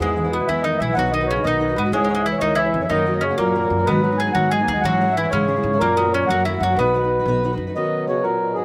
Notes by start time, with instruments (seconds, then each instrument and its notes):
0.00 upright bass E2, twelve-string acoustic guitar E3 G#3 B3 E4, mandolin G#3, accordion G#4
0.11 bass clarinet G#2
0.16 twelve-string acoustic guitar E3 G#3 B3 E4
0.22 bass clarinet G#2, twelve-string acoustic guitar B3 E4
0.26 twelve-string acoustic guitar G#3
0.31 bass clarinet B2, mandolin B3, accordion B4
0.40 twelve-string acoustic guitar G#3 B3 E4
0.47 upright bass E2, twelve-string acoustic guitar E3 G#3 B3 E4, bass clarinet E3, mandolin E4, accordion E5
0.62 bass clarinet D#3, twelve-string acoustic guitar E3 G#3, mandolin D#4, accordion D#5
0.66 twelve-string acoustic guitar B3 E4
0.72 twelve-string acoustic guitar G#3 B3 E4
0.78 upright bass B1, bass clarinet E3, mandolin E4, accordion E5
0.88 twelve-string acoustic guitar G#3 B3 E4
0.94 upright bass B1, bass clarinet F#3, twelve-string acoustic guitar B3 D#4 F#4 B4, accordion F#5
0.99 mandolin F#4
1.12 bass clarinet D#3, twelve-string acoustic guitar B3 D#4 F#4 B4, mandolin D#4, accordion D#5
1.20 twelve-string acoustic guitar D#4 F#4 B4
1.27 bass clarinet C#3, mandolin C#4, accordion C#5
1.36 twelve-string acoustic guitar D#4 F#4 B4
1.44 upright bass B1, bass clarinet D#3, twelve-string acoustic guitar B3 D#4 F#4 B4, mandolin D#4, accordion D#5
1.60 twelve-string acoustic guitar B3 D#4 F#4 B4
1.68 twelve-string acoustic guitar D#4 F#4 B4
1.75 upright bass G#2, bass clarinet B2, mandolin B3, accordion B4
1.84 twelve-string acoustic guitar D#4 F#4 B4
1.92 upright bass C#2, bass clarinet G#2, mandolin G#3, twelve-string acoustic guitar C#4 E4 G#4 C#5, accordion G#4
2.04 mandolin G#3
2.09 twelve-string acoustic guitar C#4 E4 G#4 C#5
2.15 mandolin G#3, twelve-string acoustic guitar E4 G#4 C#5
2.23 bass clarinet E3, mandolin E4, accordion E5
2.32 twelve-string acoustic guitar E4 G#4 C#5
2.38 upright bass C#2, bass clarinet D#3, twelve-string acoustic guitar C#4 E4 G#4 C#5, mandolin D#4, accordion C#5 D#5
2.55 bass clarinet E3, twelve-string acoustic guitar C#4 E4 G#4 C#5, mandolin E4, accordion E5
2.65 twelve-string acoustic guitar E4 G#4 C#5
2.74 upright bass F2
2.81 twelve-string acoustic guitar E4 G#4 C#5, accordion E5
2.89 upright bass F#2, bass clarinet D#3, twelve-string acoustic guitar F#3 A#3 C#4 F#4, mandolin D#4, accordion D#5
3.06 twelve-string acoustic guitar F#3 A#3 C#4 F#4
3.13 twelve-string acoustic guitar A#3 C#4 F#4
3.21 bass clarinet C#3, mandolin C#4, accordion C#5
3.29 twelve-string acoustic guitar A#3 C#4 F#4
3.38 upright bass F#2, bass clarinet A#2, twelve-string acoustic guitar F#3 A#3 C#4 F#4, mandolin A#3, accordion A#4
3.55 twelve-string acoustic guitar F#3 A#3 C#4 F#4
3.63 twelve-string acoustic guitar A#3 C#4 F#4
3.70 upright bass F#2
3.79 twelve-string acoustic guitar A#3 C#4 F#4
3.86 upright bass G#2, twelve-string acoustic guitar G#2 D#3 F#3 B3 D#4 F#4, bass clarinet B2, mandolin B3, accordion B4
4.02 bass clarinet F#3, twelve-string acoustic guitar F#3 B3 D#4 F#4
4.11 twelve-string acoustic guitar F#3 B3 D#4 F#4
4.18 mandolin G#4, accordion G#5
4.26 twelve-string acoustic guitar F#3 B3 D#4 F#4
4.33 twelve-string acoustic guitar G#2 D#3 F#3 B3 D#4 F#4, upright bass G#2, bass clarinet F#3, mandolin F#4, accordion F#5
4.51 twelve-string acoustic guitar F#3 B3 D#4 F#4, bass clarinet G#3, mandolin G#4, accordion G#5
4.59 twelve-string acoustic guitar F#3 B3 D#4 F#4
4.63 bass clarinet A#3
4.67 upright bass D#2, mandolin G#4
4.73 twelve-string acoustic guitar F#3 B3 D#4 F#4, bass clarinet G#3
4.81 twelve-string acoustic guitar G#2 E3 G#3 C#4 E4 G#4, upright bass G#2, bass clarinet F#3, accordion F#5
4.85 mandolin F#4
5.01 twelve-string acoustic guitar G#3 C#4 E4 G#4
5.08 twelve-string acoustic guitar G#3 C#4 E4 G#4
5.12 accordion E5
5.16 bass clarinet E3, mandolin E4
5.23 twelve-string acoustic guitar G#3 C#4 E4 G#4
5.30 twelve-string acoustic guitar G#2 E3 G#3 C#4 E4 G#4, upright bass G#2, bass clarinet C#3, mandolin C#4, accordion C#5
5.48 twelve-string acoustic guitar G#3 C#4 E4 G#4
5.56 twelve-string acoustic guitar G#3 C#4 E4 G#4
5.63 upright bass G#2
5.73 twelve-string acoustic guitar G#3 C#4 E4 G#4
5.79 upright bass F#2, bass clarinet A#2, twelve-string acoustic guitar F#3 A#3 C#4 F#4, mandolin A#3, accordion A#4
5.97 twelve-string acoustic guitar F#3 A#3 C#4 F#4, mandolin B3
6.05 twelve-string acoustic guitar A#3 C#4 F#4
6.13 mandolin C#4, accordion C#5
6.22 twelve-string acoustic guitar A#3 C#4 F#4
6.28 upright bass F#2, bass clarinet F#3, twelve-string acoustic guitar F#3 A#3 C#4 F#4, mandolin F#4, accordion F#5
6.45 twelve-string acoustic guitar F#3 A#3 C#4 F#4, mandolin E4, accordion E5
6.54 twelve-string acoustic guitar A#3 C#4 F#4
6.60 upright bass F#2, bass clarinet F#3, mandolin F#4, accordion F#5
6.70 twelve-string acoustic guitar A#3 C#4 F#4
6.76 upright bass B1, bass clarinet B2, mandolin B3, twelve-string acoustic guitar B3 D#4 F#4 B4, accordion B4
6.94 twelve-string acoustic guitar B3 D#4 F#4 B4
7.03 twelve-string acoustic guitar D#4 F#4 B4
7.19 twelve-string acoustic guitar D#4 F#4 B4
7.25 upright bass B1, twelve-string acoustic guitar B3 D#4 F#4 B4
7.43 twelve-string acoustic guitar B3 D#4 F#4 B4
7.52 twelve-string acoustic guitar D#4 F#4 B4
7.57 upright bass F#2
7.67 twelve-string acoustic guitar D#4 F#4 B4
7.74 harmonium B2 F#3, bass clarinet D#3, twelve-string acoustic guitar B3 C#4 F#4 B4, accordion D#5
8.07 bass clarinet C#3, twelve-string acoustic guitar B3 C#4 F#4 B4, accordion C#5
8.22 bass clarinet A#2, twelve-string acoustic guitar B3 C#4 F#4, accordion A#4
8.40 bass clarinet A#2
8.54 bass clarinet G#2, twelve-string acoustic guitar F#4 B4, accordion G#4
8.58 twelve-string acoustic guitar C#4